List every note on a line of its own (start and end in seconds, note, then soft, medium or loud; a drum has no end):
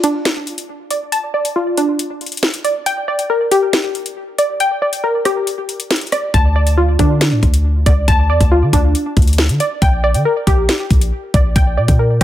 0.00 1.34 D4 loud
0.00 1.12 F4 medium
0.00 0.89 D5 medium
0.00 0.69 A5 loud
0.00 closed hi-hat medium
0.25 snare loud
0.25 closed hi-hat medium
0.47 closed hi-hat medium
0.58 closed hi-hat medium
0.91 1.33 D5 medium
0.91 closed hi-hat medium
1.12 2.43 A5 loud
1.12 closed hi-hat medium
1.34 2.63 D5 medium
1.45 closed hi-hat medium
1.56 2.86 F4 medium
1.77 2.86 D4 medium
1.77 closed hi-hat medium
1.99 closed hi-hat medium
2.21 closed hi-hat soft
2.26 closed hi-hat soft
2.32 closed hi-hat medium
2.37 closed hi-hat medium
2.43 snare loud
2.43 closed hi-hat medium
2.54 closed hi-hat medium
2.64 2.86 D5 medium
2.64 closed hi-hat medium
2.86 4.17 G5 loud
2.86 closed hi-hat medium
3.08 4.37 D5 medium
3.19 closed hi-hat medium
3.30 4.60 A#4 medium
3.51 4.82 G4 loud
3.51 closed hi-hat medium
3.73 snare loud
3.73 closed hi-hat medium
3.95 closed hi-hat medium
4.06 closed hi-hat medium
4.38 4.81 D5 medium
4.38 closed hi-hat medium
4.60 5.91 G5 loud
4.60 closed hi-hat medium
4.82 6.11 D5 medium
4.93 closed hi-hat medium
5.04 6.34 A#4 medium
5.25 6.34 G4 loud
5.25 cross-stick medium
5.25 closed hi-hat medium
5.47 closed hi-hat medium
5.69 closed hi-hat medium
5.80 closed hi-hat medium
5.91 snare loud
5.91 closed hi-hat medium
5.96 closed hi-hat medium
6.01 closed hi-hat medium
6.07 closed hi-hat soft
6.12 6.34 D5 medium
6.12 cross-stick loud
6.12 closed hi-hat medium
6.34 6.97 D2 loud
6.34 7.64 A5 loud
6.34 kick loud
6.34 closed hi-hat medium
6.56 7.85 D5 medium
6.67 closed hi-hat medium
6.77 8.08 F4 medium
6.99 7.33 D3 loud
6.99 8.30 D4 loud
6.99 kick medium
6.99 closed hi-hat medium
7.21 snare loud
7.21 closed hi-hat medium
7.32 7.42 A2 loud
7.43 7.84 D2 loud
7.43 kick loud
7.43 closed hi-hat medium
7.54 closed hi-hat medium
7.86 8.07 C#2 loud
7.86 8.28 D5 medium
7.86 kick loud
7.86 closed hi-hat medium
8.08 8.31 D2 loud
8.08 9.38 A5 loud
8.08 kick loud
8.08 closed hi-hat medium
8.30 8.40 E2 loud
8.30 9.59 D5 medium
8.41 8.64 D2 loud
8.41 kick medium
8.41 closed hi-hat medium
8.51 9.82 F4 medium
8.62 8.73 D3 loud
8.73 8.94 D2 loud
8.73 9.82 D4 medium
8.73 kick medium
8.73 closed hi-hat medium
8.95 closed hi-hat medium
9.17 9.51 D2 loud
9.17 kick medium
9.17 closed hi-hat soft
9.22 closed hi-hat soft
9.28 closed hi-hat medium
9.33 closed hi-hat medium
9.38 snare loud
9.38 closed hi-hat soft
9.49 9.60 D3 medium
9.49 closed hi-hat medium
9.60 9.82 D5 medium
9.60 closed hi-hat medium
9.82 10.16 A#1 loud
9.82 11.12 G5 loud
9.82 kick loud
9.82 closed hi-hat medium
10.04 11.33 D5 medium
10.14 10.25 D3 loud
10.14 closed hi-hat medium
10.25 11.56 A#4 medium
10.47 10.68 A#1 loud
10.47 11.78 G4 medium
10.47 kick medium
10.47 closed hi-hat medium
10.69 snare loud
10.69 closed hi-hat medium
10.91 11.11 A#1 loud
10.91 kick medium
10.91 closed hi-hat medium
11.01 closed hi-hat medium
11.34 11.55 A#1 loud
11.34 11.76 D5 medium
11.34 kick loud
11.34 closed hi-hat medium
11.56 11.79 A#1 loud
11.56 12.24 G5 loud
11.56 kick loud
11.56 closed hi-hat medium
11.77 11.88 A#2 medium
11.77 12.24 D5 medium
11.88 12.20 A#2 loud
11.88 kick medium
11.88 closed hi-hat medium
11.99 12.24 A#4 medium